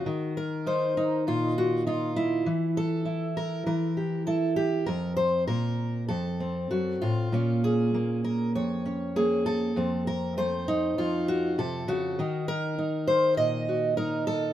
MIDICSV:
0, 0, Header, 1, 2, 480
1, 0, Start_track
1, 0, Key_signature, -5, "minor"
1, 0, Tempo, 603622
1, 41, Time_signature, 4, 2, 24, 8
1, 4361, Tempo, 610376
1, 9161, Tempo, 600601
1, 11512, End_track
2, 0, Start_track
2, 0, Title_t, "Steel-string acoustic guitar"
2, 0, Program_c, 0, 25
2, 0, Note_on_c, 0, 66, 76
2, 49, Note_on_c, 0, 51, 74
2, 289, Note_off_c, 0, 66, 0
2, 295, Note_on_c, 0, 70, 84
2, 528, Note_on_c, 0, 63, 56
2, 533, Note_on_c, 0, 72, 89
2, 763, Note_off_c, 0, 63, 0
2, 772, Note_on_c, 0, 63, 67
2, 1010, Note_off_c, 0, 72, 0
2, 1010, Note_on_c, 0, 46, 61
2, 1011, Note_off_c, 0, 70, 0
2, 1015, Note_on_c, 0, 65, 77
2, 1250, Note_off_c, 0, 63, 0
2, 1256, Note_on_c, 0, 66, 79
2, 1479, Note_off_c, 0, 65, 0
2, 1480, Note_off_c, 0, 66, 0
2, 1483, Note_on_c, 0, 63, 59
2, 1489, Note_on_c, 0, 65, 75
2, 1718, Note_off_c, 0, 63, 0
2, 1721, Note_on_c, 0, 64, 82
2, 1955, Note_off_c, 0, 46, 0
2, 1958, Note_on_c, 0, 52, 69
2, 1962, Note_off_c, 0, 65, 0
2, 1964, Note_off_c, 0, 51, 0
2, 2204, Note_on_c, 0, 69, 97
2, 2419, Note_off_c, 0, 64, 0
2, 2429, Note_on_c, 0, 64, 57
2, 2678, Note_on_c, 0, 70, 82
2, 2904, Note_off_c, 0, 52, 0
2, 2905, Note_off_c, 0, 70, 0
2, 2913, Note_on_c, 0, 52, 66
2, 2915, Note_on_c, 0, 70, 75
2, 3153, Note_off_c, 0, 69, 0
2, 3156, Note_on_c, 0, 67, 47
2, 3388, Note_off_c, 0, 64, 0
2, 3390, Note_off_c, 0, 67, 0
2, 3393, Note_on_c, 0, 69, 79
2, 3398, Note_on_c, 0, 64, 59
2, 3625, Note_off_c, 0, 69, 0
2, 3628, Note_on_c, 0, 67, 84
2, 3847, Note_off_c, 0, 52, 0
2, 3849, Note_off_c, 0, 64, 0
2, 3858, Note_off_c, 0, 70, 0
2, 3868, Note_on_c, 0, 70, 94
2, 3873, Note_off_c, 0, 67, 0
2, 3878, Note_on_c, 0, 41, 73
2, 4105, Note_off_c, 0, 70, 0
2, 4108, Note_on_c, 0, 72, 93
2, 4350, Note_off_c, 0, 72, 0
2, 4354, Note_on_c, 0, 70, 88
2, 4359, Note_on_c, 0, 46, 55
2, 4360, Note_off_c, 0, 41, 0
2, 4830, Note_off_c, 0, 70, 0
2, 4833, Note_on_c, 0, 69, 82
2, 4840, Note_off_c, 0, 46, 0
2, 4840, Note_on_c, 0, 41, 66
2, 5083, Note_on_c, 0, 60, 45
2, 5322, Note_off_c, 0, 41, 0
2, 5322, Note_on_c, 0, 66, 79
2, 5327, Note_on_c, 0, 42, 52
2, 5560, Note_off_c, 0, 69, 0
2, 5563, Note_off_c, 0, 66, 0
2, 5565, Note_on_c, 0, 65, 77
2, 5566, Note_off_c, 0, 42, 0
2, 5571, Note_on_c, 0, 45, 55
2, 5777, Note_off_c, 0, 60, 0
2, 5806, Note_on_c, 0, 46, 71
2, 5809, Note_off_c, 0, 45, 0
2, 5810, Note_on_c, 0, 58, 48
2, 5817, Note_on_c, 0, 61, 50
2, 6057, Note_on_c, 0, 68, 87
2, 6286, Note_off_c, 0, 58, 0
2, 6295, Note_on_c, 0, 58, 57
2, 6529, Note_off_c, 0, 65, 0
2, 6532, Note_on_c, 0, 70, 80
2, 6771, Note_off_c, 0, 46, 0
2, 6772, Note_off_c, 0, 70, 0
2, 6774, Note_on_c, 0, 41, 56
2, 6775, Note_on_c, 0, 73, 77
2, 7002, Note_off_c, 0, 61, 0
2, 7012, Note_on_c, 0, 61, 43
2, 7015, Note_off_c, 0, 68, 0
2, 7241, Note_off_c, 0, 58, 0
2, 7250, Note_on_c, 0, 58, 58
2, 7254, Note_on_c, 0, 68, 85
2, 7484, Note_off_c, 0, 73, 0
2, 7487, Note_on_c, 0, 69, 89
2, 7697, Note_off_c, 0, 58, 0
2, 7697, Note_off_c, 0, 61, 0
2, 7716, Note_off_c, 0, 41, 0
2, 7725, Note_on_c, 0, 41, 73
2, 7728, Note_off_c, 0, 68, 0
2, 7731, Note_on_c, 0, 60, 46
2, 7966, Note_off_c, 0, 69, 0
2, 7969, Note_on_c, 0, 70, 87
2, 8205, Note_on_c, 0, 57, 58
2, 8206, Note_off_c, 0, 70, 0
2, 8209, Note_on_c, 0, 72, 100
2, 8444, Note_off_c, 0, 60, 0
2, 8447, Note_on_c, 0, 63, 83
2, 8673, Note_off_c, 0, 41, 0
2, 8681, Note_on_c, 0, 41, 61
2, 8682, Note_off_c, 0, 72, 0
2, 8685, Note_on_c, 0, 65, 81
2, 8921, Note_on_c, 0, 66, 93
2, 9154, Note_on_c, 0, 48, 60
2, 9157, Note_off_c, 0, 65, 0
2, 9159, Note_off_c, 0, 66, 0
2, 9160, Note_on_c, 0, 69, 85
2, 9161, Note_off_c, 0, 63, 0
2, 9390, Note_off_c, 0, 48, 0
2, 9393, Note_on_c, 0, 49, 64
2, 9397, Note_on_c, 0, 66, 93
2, 9611, Note_off_c, 0, 57, 0
2, 9636, Note_off_c, 0, 49, 0
2, 9639, Note_off_c, 0, 41, 0
2, 9640, Note_off_c, 0, 69, 0
2, 9641, Note_on_c, 0, 51, 76
2, 9647, Note_on_c, 0, 63, 51
2, 9872, Note_off_c, 0, 66, 0
2, 9875, Note_on_c, 0, 70, 107
2, 10108, Note_off_c, 0, 63, 0
2, 10117, Note_on_c, 0, 63, 61
2, 10349, Note_on_c, 0, 72, 94
2, 10585, Note_off_c, 0, 72, 0
2, 10586, Note_on_c, 0, 46, 60
2, 10588, Note_on_c, 0, 75, 99
2, 10834, Note_off_c, 0, 70, 0
2, 10837, Note_on_c, 0, 66, 46
2, 11062, Note_off_c, 0, 66, 0
2, 11063, Note_off_c, 0, 63, 0
2, 11065, Note_on_c, 0, 70, 85
2, 11073, Note_on_c, 0, 63, 57
2, 11301, Note_off_c, 0, 70, 0
2, 11304, Note_on_c, 0, 69, 87
2, 11512, Note_off_c, 0, 46, 0
2, 11512, Note_off_c, 0, 51, 0
2, 11512, Note_off_c, 0, 63, 0
2, 11512, Note_off_c, 0, 69, 0
2, 11512, Note_off_c, 0, 75, 0
2, 11512, End_track
0, 0, End_of_file